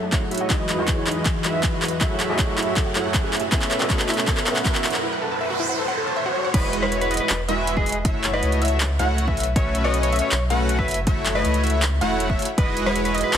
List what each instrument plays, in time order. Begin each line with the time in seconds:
Already playing: analog synth pad F#2 F#3 A3 E4 G#4, tine electric piano F#3 F#4 G#4 A4 E5, riser
0.03 synth arpeggio sound A5
0.12 analog polysynth A3 E4 F#4 C#5 F#5, synth arpeggio sound E5, kick, clap, closed hi-hat
0.22 synth arpeggio sound F#4
0.31 analog polysynth A3 E4 F#4 C#5 E5, synth arpeggio sound F#4, closed hi-hat
0.35 closed hi-hat
0.38 analog polysynth A3 E4 F#4 C#5 D#5, synth arpeggio sound F#5, closed hi-hat
0.49 analog synth pad E2 E3 D#4 G#4, tine electric piano E3 E4 F#4 G#4 D#5, analog polysynth G#3 E4 F#4 B4 D#5, synth arpeggio sound D#4, kick, clap, closed hi-hat
0.60 synth arpeggio sound D#5
0.69 synth arpeggio sound F#4, clap, closed hi-hat
0.78 tine electric piano E3 E4 F#4 G#4 D#5, analog polysynth G#3 E4 F#4 B4 C#5, synth arpeggio sound E5
0.88 synth arpeggio sound B4, kick, clap, closed hi-hat
0.97 synth arpeggio sound E4
1.07 analog polysynth G#3 E4 F#4 B4 D#5, synth arpeggio sound D#4, clap, closed hi-hat
1.12 closed hi-hat
1.16 synth arpeggio sound D#5
1.26 synth arpeggio sound F#4, kick, clap, closed hi-hat
1.35 synth arpeggio sound D#5
1.44 analog polysynth G#3 E4 F#4 B4 E5, synth arpeggio sound F#4, clap, closed hi-hat
1.54 synth arpeggio sound E5
1.63 synth arpeggio sound B4, kick, clap, closed hi-hat
1.73 analog polysynth G#3 E4 F#4 B4 D#5, synth arpeggio sound E4
1.82 synth arpeggio sound E4, clap, closed hi-hat
1.85 closed hi-hat
1.88 synth arpeggio sound D#5, closed hi-hat
2.00 analog synth pad F#2 A3 E4, tine electric piano F#3 F#4 G#4 A4 E5, analog polysynth A3 E4 F#4 C#5 E5, synth arpeggio sound E4, kick, clap, closed hi-hat
2.11 synth arpeggio sound F#5
2.20 synth arpeggio sound A4, clap, closed hi-hat
2.29 tine electric piano F#3 F#4 G#4 A4 E5, analog polysynth A3 E4 F#4 C#5 D#5, synth arpeggio sound A5
2.39 synth arpeggio sound E5, kick, clap, closed hi-hat
2.48 synth arpeggio sound F#4
2.58 analog polysynth A3 E4 F#4 C#5 E5, synth arpeggio sound E4, clap, closed hi-hat
2.63 closed hi-hat
2.67 synth arpeggio sound F#5
2.77 synth arpeggio sound A4, kick, clap, closed hi-hat
2.86 synth arpeggio sound F#5
2.95 analog polysynth A3 E4 F#4 C#5 F#5, synth arpeggio sound A4, clap, closed hi-hat
3.05 synth arpeggio sound A5
3.14 synth arpeggio sound E5, kick, clap, closed hi-hat
3.24 analog polysynth A3 C#4 F#4 B4 E5, synth arpeggio sound F#4
3.33 analog synth pad B2 C#4 A4, synth arpeggio sound F#4, clap, closed hi-hat
3.37 closed hi-hat
3.40 synth arpeggio sound E5, closed hi-hat
3.51 analog polysynth A3 C#4 F#4 B4 E5, tine electric piano B3 F#4 A4 C#5 E5, synth arpeggio sound E4, kick, clap, closed hi-hat
3.62 synth arpeggio sound E5, clap
3.71 synth arpeggio sound A4, clap, closed hi-hat
3.80 analog polysynth A3 C#4 F#4 B4 D#5, tine electric piano B3 F#4 A4 C#5 E5, synth arpeggio sound F#5, clap
3.90 synth arpeggio sound C#5, kick, clap, closed hi-hat
3.99 synth arpeggio sound F#4, clap
4.09 analog polysynth A3 C#4 F#4 B4 E5, synth arpeggio sound E4, clap, closed hi-hat
4.14 closed hi-hat
4.18 synth arpeggio sound E5, clap
4.28 synth arpeggio sound A4, kick, clap, closed hi-hat
4.37 synth arpeggio sound E5, clap
4.46 analog polysynth A3 C#4 F#4 B4 F#5, synth arpeggio sound A4, clap, closed hi-hat
4.56 synth arpeggio sound F#5, clap
4.65 synth arpeggio sound C#5, kick, clap, closed hi-hat
4.75 analog polysynth A3 E4 F#4 C#5 E5, synth arpeggio sound F#4, clap
4.84 analog synth pad F#2 F#3 A3 G#4, synth arpeggio sound F#4, clap, closed hi-hat
4.87 closed hi-hat
4.91 synth arpeggio sound F#5, clap, closed hi-hat
5.03 synth arpeggio sound E4, noise sweep
5.12 synth arpeggio sound F#5
5.22 synth arpeggio sound A4
5.31 synth arpeggio sound A5
5.41 synth arpeggio sound E5
5.50 synth arpeggio sound F#4
5.60 synth arpeggio sound E4
5.69 synth arpeggio sound F#5
5.79 synth arpeggio sound A4
5.88 synth arpeggio sound F#5
5.98 synth arpeggio sound A4
6.07 synth arpeggio sound A5
6.16 synth arpeggio sound E5
6.26 synth arpeggio sound F#4
6.35 synth arpeggio sound F#4
6.45 synth arpeggio sound F#5
6.54 sub bass E1, analog polysynth G#3 E4 F#4 B4 D#5, clean electric guitar B4, synth pluck D#5, kick, closed hi-hat, crash
6.73 closed hi-hat
6.82 analog polysynth G#3 E4 F#4 B4 C#5, clean electric guitar B4, synth pluck C#5
6.92 closed hi-hat
7.01 clean electric guitar B4, closed hi-hat
7.11 analog polysynth G#3 E4 F#4 B4 D#5, synth pluck D#5, closed hi-hat
7.14 closed hi-hat
7.17 clean electric guitar B4, closed hi-hat
7.29 sub bass E1, clap, closed hi-hat
7.48 analog polysynth G#3 E4 F#4 B4 E5, synth pluck E5, closed hi-hat
7.67 closed hi-hat
7.77 analog polysynth G#3 E4 F#4 B4 D#5, clean electric guitar G#4, synth pluck D#5, kick
7.86 closed hi-hat, open hi-hat
7.92 closed hi-hat
8.05 sub bass F#1, analog polysynth A3 E4 F#4 C#5 E5, synth pluck E5, kick, closed hi-hat
8.24 clap, closed hi-hat
8.33 analog polysynth A3 E4 F#4 C#5 D#5, clean electric guitar B4, synth pluck D#5
8.43 sub bass C#2, closed hi-hat
8.52 closed hi-hat
8.62 analog polysynth A3 E4 F#4 C#5 E5, synth pluck E5, closed hi-hat
8.65 closed hi-hat
8.68 closed hi-hat
8.80 clap, closed hi-hat
8.99 sub bass C#2, analog polysynth A3 E4 F#4 C#5 F#5, synth pluck F#5, closed hi-hat
9.18 closed hi-hat
9.28 analog polysynth A3 C#4 F#4 B4 E5, synth pluck E5, kick
9.37 sub bass B1, closed hi-hat, open hi-hat
9.43 closed hi-hat
9.56 sub bass B1, analog polysynth A3 C#4 F#4 B4 E5, clean electric guitar C#5, synth pluck E5, kick, closed hi-hat
9.75 closed hi-hat
9.84 analog polysynth A3 C#4 F#4 B4 D#5, clean electric guitar C#5, synth pluck D#5
9.94 closed hi-hat
10.03 clean electric guitar C#5, closed hi-hat
10.12 analog polysynth A3 C#4 F#4 B4 E5, synth pluck E5, closed hi-hat
10.16 closed hi-hat
10.19 clean electric guitar C#5, closed hi-hat
10.31 sub bass B1, clap, closed hi-hat
10.50 analog polysynth A3 C#4 F#4 B4 F#5, synth pluck F#5, closed hi-hat
10.69 closed hi-hat
10.79 analog polysynth A3 E4 F#4 C#5 E5, clean electric guitar B4, synth pluck E5, kick
10.88 sub bass F#1, closed hi-hat, open hi-hat
10.94 closed hi-hat
11.07 analog polysynth A3 E4 F#4 C#5 E5, synth pluck E5, kick, closed hi-hat
11.26 clap, closed hi-hat
11.35 analog polysynth A3 E4 F#4 C#5 D#5, clean electric guitar B4, synth pluck D#5
11.45 sub bass C#2, closed hi-hat
11.54 closed hi-hat
11.63 analog polysynth A3 E4 F#4 C#5 E5, synth pluck E5, closed hi-hat
11.67 closed hi-hat
11.70 closed hi-hat
11.82 clap, closed hi-hat
12.01 sub bass E1, analog polysynth A3 E4 F#4 C#5 F#5, synth pluck F#5, closed hi-hat
12.20 closed hi-hat
12.30 analog polysynth A3 E4 F#4 C#5 E5, synth pluck E5, kick
12.39 closed hi-hat, open hi-hat
12.45 closed hi-hat
12.58 sub bass E1, analog polysynth G#3 E4 F#4 B4 D#5, clean electric guitar B4, synth pluck D#5, kick, closed hi-hat
12.77 closed hi-hat
12.86 analog polysynth G#3 E4 F#4 B4 C#5, clean electric guitar B4, synth pluck C#5
12.96 closed hi-hat
13.05 clean electric guitar B4, closed hi-hat
13.14 analog polysynth G#3 E4 F#4 B4 D#5, synth pluck D#5, closed hi-hat
13.18 closed hi-hat
13.21 clean electric guitar B4, closed hi-hat
13.33 sub bass E1, clap, closed hi-hat